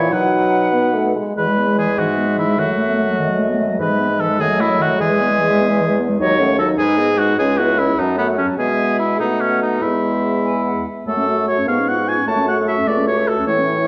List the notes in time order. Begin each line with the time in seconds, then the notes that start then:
Already playing: A#2 E3 E4 C#5
0.11 B2 F#3 D#4 B4 F#5
0.73 B3
0.95 A3
1.16 G#3
1.37 E2 E3 G#3 B4
1.48 G#3
1.58 B3
1.68 G#3
1.78 E3 G#4
1.88 G#3
1.98 G#2 E3 F#4 E5
2.08 G#3
2.18 B3
2.27 G#3
2.37 E3 E4
2.47 G#3
2.58 F#2 D#3 A3 F#4
2.68 F#3
2.78 A3
2.88 B3
2.98 A3
3.09 F#3
3.19 D#3 D#5
3.29 F#3
3.39 A3
3.49 B3
3.59 A3
3.70 F#3
3.79 G#2 E3 G#3 B4 E5
3.90 G#3
3.99 B3
4.09 G#3
4.20 E3 A4
4.29 G#3
4.39 F#2 D#3 A3 G#4 D#5
4.50 F#3
4.59 A3 E4
4.70 F#3
4.79 D#3 F#4
4.90 F#3
4.99 E2 E3 G#3 G#4 E5
5.10 G#3
5.21 B3
5.30 G#3
5.40 E3
5.50 G#3
5.60 B3
5.70 G#3
5.80 E3
5.89 G#3
6.00 B3
6.09 G#3
6.19 D#2 F#3 D#4 C#5 D#5
6.39 A3 C#4 F#5
6.59 F#3 D#4 A4 D#5
6.78 G#2 G#3 D#4 G#4 B4
6.98 B3 G#4 D#5
7.18 G#3 D#4 F#4 B4
7.38 C#2 G#3 C#4 G#4 C#5
7.57 B3 E4 F#4 E5
7.78 G#3 C#4 E4 C#5
7.98 F#2 F#3 C#4 D#4 A5
8.18 A3 B3 F#4 F#5
8.37 F#3 C#4 A5
8.58 B2 G#3 B3 G#4 E5
8.99 E4
9.19 B2 A3 B3 D#4 F#5
9.40 C#4
9.62 D#4
9.82 E2 G#3 B3 E4 E5
10.44 G#5
10.65 F#5
10.86 E5
11.06 F#2 A3 A4 C#6
11.17 C#4
11.28 F#4
11.38 A4
11.48 F#4 C#5
11.58 C#4
11.67 G#2 B3 F5
11.79 C#4
11.88 F4 F#5
11.98 G#4
12.08 F4 G#5
12.18 C#4
12.27 F#2 A3 A5
12.37 C#4
12.47 F#4 F#5
12.57 A4
12.68 F#4 E5
12.77 C#4
12.87 C#2 A3 D5
12.98 C#4
13.07 F#4 C#5
13.18 A4
13.27 F#4 A4
13.38 C#4
13.47 A2 E3 A3 C#5 C#6
13.59 C#4
13.68 E4
13.78 A4